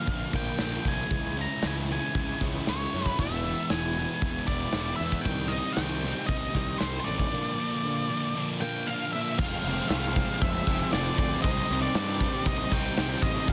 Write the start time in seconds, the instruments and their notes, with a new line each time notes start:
Already playing: lead electric guitar F5
0.06 picked electric bass A#1, overdriven electric guitar A#2 D3 F3 A#3 D4, kick, open hi-hat
0.33 picked electric bass A#1, overdriven electric guitar A#2 D3 F3 A#3 D4, lead electric guitar G5, kick
0.58 picked electric bass A#1, overdriven electric guitar A#2 D3 F3 A#3 D4, snare, open hi-hat
0.85 picked electric bass C2, overdriven electric guitar A#2 D3 F3 A#3 D4, lead electric guitar G#5, kick
1.10 picked electric bass C#2, overdriven electric guitar C#3 G#3 C#4 E4, steel-string acoustic guitar E3, kick, open hi-hat
1.36 overdriven electric guitar C#3 G#3 C#4 E4, steel-string acoustic guitar E3
1.41 lead electric guitar A#5
1.62 picked electric bass C#2, overdriven electric guitar C#3 G#3 C#4 E4, steel-string acoustic guitar E3, snare, open hi-hat
1.67 lead electric guitar G#5
1.90 overdriven electric guitar C#3 G#3 C#4 E4, steel-string acoustic guitar E3, lead electric guitar G#5
2.15 picked electric bass C#2, overdriven electric guitar C#3 G#3 C#4 E4, steel-string acoustic guitar E3, kick, open hi-hat
2.41 picked electric bass C#2, overdriven electric guitar C#3 G#3 C#4 E4, steel-string acoustic guitar E3, kick
2.67 picked electric bass C#2, overdriven electric guitar C#3 G#3 C#4 E4, lead electric guitar C#5, snare, open hi-hat
2.94 picked electric bass F#2, overdriven electric guitar C#3 G#3 C#4 E4, steel-string acoustic guitar E3
3.06 kick
3.18 picked electric bass E1, steel-string acoustic guitar E2 B2, overdriven electric guitar E3 G#3 B3 E4, lead electric guitar E5, kick, open hi-hat
3.44 steel-string acoustic guitar E2 B2, overdriven electric guitar E3 G#3 B3 E4
3.70 picked electric bass E1, steel-string acoustic guitar E2 B2, overdriven electric guitar E3 G#3 B3 E4, lead electric guitar G#5, snare, open hi-hat
3.98 steel-string acoustic guitar B2, overdriven electric guitar E3 G#3 B3 E4
4.22 picked electric bass E1, steel-string acoustic guitar E2 B2, overdriven electric guitar E3 G#3 B3 E4, kick, open hi-hat
4.47 picked electric bass E1, steel-string acoustic guitar E2 B2, overdriven electric guitar E3 G#3 B3 E4, lead electric guitar D5, kick
4.72 picked electric bass E1, steel-string acoustic guitar E2 B2, overdriven electric guitar E3 G#3 B3 E4, snare, open hi-hat
4.96 picked electric bass E2, lead electric guitar E5
5.02 steel-string acoustic guitar E2 B2, overdriven electric guitar E3 G#3 B3 E4
5.12 kick
5.21 lead electric guitar G5, open hi-hat
5.25 picked electric bass C2, overdriven electric guitar C3 G3 C4 D#4, steel-string acoustic guitar D#3, kick
5.48 lead electric guitar D#5
5.54 overdriven electric guitar C3 G3 C4 D#4, steel-string acoustic guitar D#3
5.73 lead electric guitar G5, open hi-hat
5.77 picked electric bass C2, overdriven electric guitar C3 G3 C4 D#4, steel-string acoustic guitar D#3, snare
6.04 overdriven electric guitar C3 G3 C4 D#4, steel-string acoustic guitar D#3
6.27 picked electric bass C2, overdriven electric guitar C3 G3 C4 D#4, lead electric guitar D#5, kick, open hi-hat
6.31 steel-string acoustic guitar D#3
6.54 picked electric bass C2, overdriven electric guitar C3 G3 C4 D#4, steel-string acoustic guitar D#3, kick
6.78 picked electric bass C2, overdriven electric guitar C3 G3 C4, steel-string acoustic guitar D#3, lead electric guitar C5, snare, open hi-hat
6.83 overdriven electric guitar D#4
7.00 lead electric guitar C5 D5
7.06 picked electric bass A1, overdriven electric guitar C3 G3 C4 D#4, steel-string acoustic guitar D#3
7.19 kick
7.31 overdriven electric guitar A#2 D3 F3 A#3 D4
7.56 overdriven electric guitar A#2 D3 F3 A#3 D4
7.83 overdriven electric guitar A#2 D3 F3 A#3 D4
8.09 overdriven electric guitar A#2 D3 F3 A#3 D4
8.35 overdriven electric guitar A#2 D3 F3 A#3 D4
8.61 overdriven electric guitar A#2 D3 F3 A#3 D4, lead electric guitar G5
8.87 overdriven electric guitar A#2 D3 F3 A#3 D4, lead electric guitar F5
9.13 overdriven electric guitar A#2 D3 F3 A#3 D4, lead electric guitar E5
9.38 picked electric bass F1, overdriven electric guitar F2 C3 F3 G#3 C4 F4 G#4, string section F4 G#4 C5 C6, lead electric guitar F5, kick, crash
9.64 picked electric bass F1, overdriven electric guitar F3 G#3 C4
9.89 picked electric bass C2, overdriven electric guitar F2 C3 F3 G#3 C4 F4 G#4, lead electric guitar F5, snare, open hi-hat
9.93 overdriven electric guitar C4
10.16 overdriven electric guitar F3 G#3 C4 F4 G#4, kick
10.20 overdriven electric guitar F3
10.41 picked electric bass F1, overdriven electric guitar F3 C4 F4 G#4, lead electric guitar E5, kick, open hi-hat
10.67 picked electric bass F1, overdriven electric guitar F3 G#3 C4, kick
10.92 picked electric bass F1, overdriven electric guitar C3 F3 G#3 C4, lead electric guitar D5, snare, open hi-hat
10.96 overdriven electric guitar F4 G#4
11.18 picked electric bass D2, overdriven electric guitar F3 C4 F4 G#4, lead electric guitar D5, kick
11.42 picked electric bass C2, overdriven electric guitar C3 G3 C4 D#4 G4, lead electric guitar D#5, kick, open hi-hat
11.47 overdriven electric guitar D#4, string section D#4 G4
11.70 picked electric bass C2, overdriven electric guitar G3 C4 D#4
11.82 lead electric guitar D5
11.94 picked electric bass G2, overdriven electric guitar C3 G3 C4 D#4 G4, snare, open hi-hat
12.20 overdriven electric guitar C3 G3 C4 D#4 G4, kick
12.45 picked electric bass C2, overdriven electric guitar C3 G3 C4 D#4 G4, lead electric guitar D#5, kick, open hi-hat
12.72 picked electric bass C2, overdriven electric guitar G3 C4 D#4, lead electric guitar G5, kick
12.97 picked electric bass C2, overdriven electric guitar C3 G3 C4 D#4 G4, snare, open hi-hat
13.01 overdriven electric guitar D#4
13.22 picked electric bass A1, overdriven electric guitar C3 G3 C4 D#4 G4, lead electric guitar D#5, kick
13.47 picked electric bass G1, overdriven electric guitar G2 D3 G3 B3, distorted electric guitar D4, string section B4 D5 B5, kick, open hi-hat